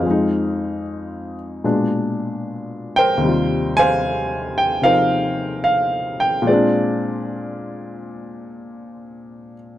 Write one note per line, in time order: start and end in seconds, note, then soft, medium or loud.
0.00 1.61 F2 medium
0.00 1.63 F3 medium
0.00 1.35 G#4 soft
0.00 1.35 C5 soft
0.00 0.81 F5 medium
0.06 1.63 G#3 medium
0.06 1.67 D#4 medium
1.64 3.24 A#2 medium
1.64 3.24 B2 soft
1.64 3.24 G#3 soft
1.64 3.25 D4 medium
2.96 4.56 A#4 medium
2.96 3.78 C5 medium
2.96 3.80 G5 loud
3.17 6.44 D#2 medium
3.17 4.80 C3 soft
3.25 6.48 G3 medium
3.25 6.48 F4 medium
3.77 4.84 C5 medium
3.77 4.82 F5 medium
3.77 4.61 G#5 loud
4.58 4.64 G5 medium
4.82 6.46 C3 soft
4.82 6.47 F3 soft
4.82 6.48 D#4 soft
4.82 6.44 A#4 medium
4.82 6.44 C5 medium
4.82 5.61 F5 loud
5.64 6.17 F5 medium
6.20 6.26 G5 medium
6.42 9.78 A#2 medium
6.42 9.78 G#3 medium
6.47 9.78 C4 medium
6.47 9.54 F4 medium
6.47 9.54 G#4 medium
6.47 9.53 D5 medium
6.53 9.78 D4 medium